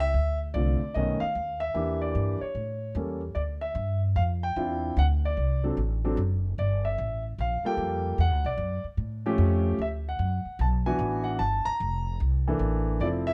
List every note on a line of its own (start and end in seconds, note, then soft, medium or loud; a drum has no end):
0.00 0.12 C#2 medium
0.00 0.37 E5 loud
0.14 0.53 D2 medium
0.54 0.79 C2 medium
0.54 0.78 D3 soft
0.54 0.78 A3 soft
0.54 0.78 C4 soft
0.54 0.79 F4 medium
0.54 0.96 D5 medium
0.81 muted upright bass stroke soft
0.94 1.19 B1 medium
0.94 1.19 D#3 medium
0.94 1.19 A3 soft
0.94 1.19 B3 soft
0.94 1.19 C#4 medium
0.94 1.22 D#5 medium
1.20 1.58 F5 medium
1.20 muted upright bass stroke soft
1.35 1.74 D#2 medium
1.60 1.98 E5 loud
1.74 2.14 E2 medium
1.74 2.36 E3 medium
1.74 2.36 A#3 soft
1.74 2.37 D4 medium
1.74 2.37 G4 medium
2.02 2.43 D5 medium
2.15 2.40 G2 medium
2.41 2.92 C#5 medium
2.41 muted upright bass stroke soft
2.55 2.94 A2 medium
2.95 3.35 E2 medium
2.95 3.20 G3 medium
2.95 3.20 A#3 soft
2.95 3.20 C#4 soft
2.95 3.20 A4 medium
3.35 3.74 D2 medium
3.35 3.41 D5 medium
3.61 3.99 E5 medium
3.75 4.15 G2 medium
4.16 4.55 F2 medium
4.16 4.22 F5 medium
4.43 4.99 G5 medium
4.56 4.96 E2 medium
4.56 4.97 C4 soft
4.56 4.98 D4 soft
4.56 4.97 E4 medium
4.56 4.97 F4 medium
4.97 5.36 D2 medium
4.97 5.04 F#5 loud
5.25 5.62 D5 medium
5.37 5.76 C2 medium
5.64 5.76 F#3 medium
5.64 5.76 C4 medium
5.64 5.77 D4 medium
5.64 5.76 A4 medium
5.77 6.16 A1 medium
6.04 6.17 F#3 medium
6.04 6.17 C4 medium
6.04 6.17 D4 medium
6.04 6.17 A4 medium
6.17 6.57 F#1 medium
6.58 6.97 G1 medium
6.58 6.86 D5 medium
6.85 7.22 E5 medium
6.98 7.37 A1 medium
7.38 7.63 A#1 medium
7.38 7.64 F5 medium
7.63 8.16 G3 medium
7.63 8.16 A#3 medium
7.63 8.16 F4 medium
7.63 8.17 A4 medium
7.63 8.21 G5 medium
7.63 muted upright bass stroke soft
7.77 8.17 F2 medium
8.18 8.31 E2 medium
8.18 8.47 F#5 loud
8.31 8.44 D2 medium
8.44 8.57 B1 medium
8.44 8.83 D5 medium
8.57 8.83 F#2 medium
8.84 muted upright bass stroke soft
8.97 9.37 A2 medium
9.26 9.77 F3 medium
9.26 9.77 A3 medium
9.26 9.77 C#4 medium
9.26 9.77 G4 medium
9.38 9.78 F2 medium
9.79 10.18 D2 medium
9.79 9.87 E5 medium
10.09 10.63 F#5 medium
10.19 10.44 F#2 medium
10.45 muted upright bass stroke soft
10.59 10.98 B1 medium
10.59 10.67 A5 medium
10.86 11.38 E3 medium
10.86 11.38 B3 medium
10.86 11.38 D4 medium
10.86 11.38 F#4 medium
10.86 11.28 G#5 medium
10.99 11.38 A1 medium
11.24 11.40 F#5 medium
11.39 11.64 G1 medium
11.39 11.67 A5 medium
11.65 12.16 A#5 loud
11.65 muted upright bass stroke soft
11.80 12.19 F1 medium
12.20 12.59 C2 medium
12.47 12.99 E3 medium
12.47 12.99 A#3 medium
12.47 12.99 D4 medium
12.47 12.99 A4 medium
12.59 12.99 A1 medium
13.00 13.34 F1 medium
13.00 13.34 F3 medium
13.00 13.34 C4 medium
13.00 13.34 E4 medium
13.00 13.34 A4 medium
13.00 13.07 D5 medium
13.27 13.34 E5 loud